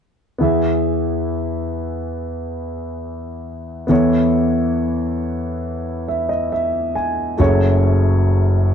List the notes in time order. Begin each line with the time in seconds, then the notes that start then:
0.38 E2 E3 B3 E4 G#4
0.43 E5
3.87 E2 E3 B3 E4 A4 C#5
6.08 E5
6.29 D#5
6.52 E5
6.96 G#5
7.37 F#1 F#2 A3 F#4 G#4 C#5